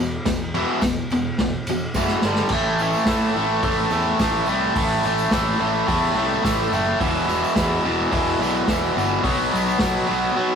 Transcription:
Already playing: E2 B2
0.00 E1
0.25 E1 E2 B2, kick, snare, ride, tambourine
0.54 E2 B2 E3, ride
0.82 E1 E2 B2, kick, snare, ride, tambourine
1.10 E1 E2 B2, ride, tambourine
1.38 E1 E2 B2, kick, snare, ride, tambourine
1.67 E1 E2 B2, ride, tambourine
1.94 F#1 E2 B2 E3, kick, snare, tambourine
2.08 snare
2.21 G1 G2 D3, snare, tambourine
2.26 G3
2.35 snare
2.49 A1, kick, crash, tambourine
2.53 A2 E3 A3
2.79 A2 E3 A3, tambourine
2.93 tambourine
3.05 A2 E3 A3, kick, snare, open hi-hat, tambourine
3.36 A1 A2 E3 A3
3.50 tambourine
3.63 A1 A2 E3 A3, kick, open hi-hat, tambourine
3.90 E2 A2 E3 A3, tambourine
4.05 tambourine
4.19 A1 A2 E3 A3, kick, snare, open hi-hat, tambourine
4.46 C2 A2 E3 A3, tambourine
4.61 tambourine
4.74 A1 A2 E3 A3, kick, open hi-hat, tambourine
5.03 A1 A2 E3 A3, tambourine
5.18 tambourine
5.31 A1 A2 E3 A3, kick, snare, open hi-hat, tambourine
5.59 A1 A2 E3 A3
5.75 tambourine
5.87 E2 A2 E3 A3, kick, open hi-hat, tambourine
6.15 C2 A2 E3 A3
6.30 tambourine
6.42 A1 A2 E3 A3, kick, snare, open hi-hat, tambourine
6.72 F#1 A2 E3 A3, tambourine
6.86 tambourine
7.00 E1 E2 B2 E3, kick, open hi-hat, tambourine
7.28 E2 B2 E3, tambourine
7.44 tambourine
7.55 E2 B2 E3, kick, snare, open hi-hat, tambourine
7.84 E1 E2 B2 E3
8.01 tambourine
8.12 E1 E2 B2 E3, kick, open hi-hat, tambourine
8.39 B1 E2 B2 E3, tambourine
8.58 tambourine
8.67 E1 E2 B2 E3, kick, snare, open hi-hat, tambourine
8.95 G1 E2 B2 E3, tambourine
9.13 tambourine
9.23 B1 B2 F#3 B3, kick, open hi-hat, tambourine
9.42 tambourine
9.51 B1 B2 F#3 B3
9.55 tambourine
9.70 tambourine
9.79 B1 B2 F#3 B3, kick, snare, open hi-hat
9.83 tambourine
9.97 tambourine
10.07 B1 B2 F#3 B3
10.12 tambourine
10.25 tambourine
10.35 B2 F#3 B3

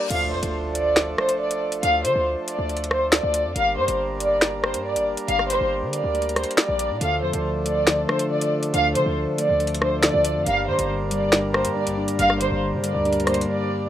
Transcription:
Already playing: reverse cymbal
0.10 D2 F3 A3 D4 A4 F5, closed hi-hat, crash, impact
0.32 F2 C5
0.43 D2, closed hi-hat
0.75 D5, closed hi-hat
0.96 finger snap, snare, closed hi-hat
1.18 C5, cross-stick
1.29 closed hi-hat
1.40 D5
1.51 closed hi-hat
1.72 closed hi-hat
1.83 D2 F5, closed hi-hat
2.05 D3 C5, closed hi-hat
2.15 D2
2.48 D5, closed hi-hat
2.59 D2
2.69 closed hi-hat
2.77 closed hi-hat
2.84 closed hi-hat
2.91 C5, cross-stick
3.12 D5, finger snap, snare, closed hi-hat
3.23 D2
3.34 closed hi-hat
3.45 F2
3.56 G1 G3 A#3 D4 A#4 F5, closed hi-hat
3.77 G2 C5
3.88 G1, closed hi-hat
4.20 D5, closed hi-hat
4.41 finger snap, snare, closed hi-hat
4.64 C5, cross-stick
4.74 G2, closed hi-hat
4.85 D5
4.96 G1, closed hi-hat
5.17 closed hi-hat
5.28 G1 F5, closed hi-hat
5.39 cross-stick
5.50 C5, closed hi-hat
5.61 G1
5.82 D3
5.93 D5, closed hi-hat
6.04 D2
6.15 closed hi-hat
6.22 closed hi-hat
6.29 closed hi-hat
6.36 C5, cross-stick, closed hi-hat
6.44 closed hi-hat
6.51 closed hi-hat
6.57 D5, finger snap, snare, closed hi-hat
6.69 A#1
6.79 closed hi-hat
6.90 A#2
7.01 D2 D3 F3 A3 A4 F5, closed hi-hat
7.23 F2 F3 C5
7.33 D2, closed hi-hat
7.45 D3
7.65 A3 D5, closed hi-hat
7.87 D3, finger snap, snare, closed hi-hat
8.09 D4 C5, cross-stick
8.19 closed hi-hat
8.31 D3 D5
8.41 closed hi-hat
8.52 D5
8.63 closed hi-hat
8.74 D2 D3 F5, closed hi-hat
8.95 D3 F3 C5, closed hi-hat
9.06 D2
9.17 D3
9.38 A3 D5, closed hi-hat
9.49 D2
9.60 D3, closed hi-hat
9.67 closed hi-hat
9.74 closed hi-hat
9.82 D4 C5, cross-stick
10.03 D3 D5, finger snap, snare, closed hi-hat
10.14 D2
10.25 D5, closed hi-hat
10.36 F2
10.46 G1 G2 G3 A#3 D4 A#4 F5, closed hi-hat
10.68 G2 D3 C5
10.79 G1, closed hi-hat
10.89 G2
11.11 G3 D5, closed hi-hat
11.32 G2, finger snap, snare, closed hi-hat
11.54 A#3 C5, cross-stick
11.65 G2, closed hi-hat
11.76 G2 D5
11.87 G1, closed hi-hat
11.98 D4
12.08 closed hi-hat
12.19 G1 G2 F5, closed hi-hat
12.30 cross-stick
12.41 D3 C5, closed hi-hat
12.51 G1
12.62 G2
12.73 D3
12.84 G3 D5, closed hi-hat
12.95 D2
13.05 G2, closed hi-hat
13.13 closed hi-hat
13.20 closed hi-hat
13.27 A#3 C5, cross-stick, closed hi-hat
13.34 closed hi-hat
13.41 closed hi-hat
13.48 G2 D5
13.70 D4

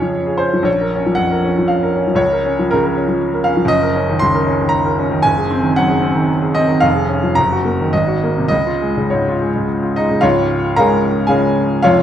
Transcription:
Already playing: F2 C#3 F3 C#4 G#4 C#5 F5
0.02 F3
0.27 G#4
0.38 C#4 C5
0.53 F3
0.63 A#1 C#5
0.81 A#4
0.96 C#4
1.06 F3
1.15 F2 F#5
1.31 A#4
1.45 C#4
1.58 F3
1.68 F5
1.83 A#4
1.96 C#4
2.07 F3
2.15 C#2 C#5
2.32 A#4
2.46 C#4
2.59 F3
2.71 C#3 A#4
2.86 A#4
2.97 C#4
3.08 F3
3.34 A#4
3.44 C#4 F5
3.57 F3
3.65 F#1 D#5
3.82 A#4
3.95 C#4
4.09 D#3
4.19 C#2 C6
4.35 A#4
4.47 C#4
4.61 D#3
4.69 A#5
4.85 A#4
4.99 C#4
5.11 D#3
5.22 F#1 G#5
5.38 G#4
5.51 C4
5.63 D#3
5.76 F#2 F#5
5.89 G#4
6.02 C4
6.15 D#3
6.42 G#4
6.55 C4 D#5
6.68 D#3
6.80 F1 F5
6.95 G#4
7.09 C#4
7.24 F3
7.35 F#1 A#5
7.52 F#4
7.65 A#3
7.81 D#3
7.93 G#1 D#5
8.07 F#4
8.24 A#3
8.38 C3
8.48 C#2 D#5
8.67 F4
8.82 G#3
8.97 C#3
9.10 G#2 C#5
9.29 F4
9.41 G#3
9.56 C#3
9.83 F4
9.96 G#3 D#4 D#5
10.11 C#3
10.21 C#1 C#2 F4 C#5 F5
10.76 C#3 G#3 C#4 A#4 F5 A#5
11.27 C#3 G#3 C#4 G#4 F5 G#5
11.82 F1 F2 F4 C#5 F5

